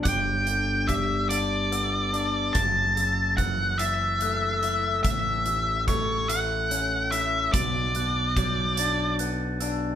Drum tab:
HH |xxxxxx|xxxxxx|xxxxxx|xxxxxx|
BD |o-o---|o-o---|o-o---|o-o---|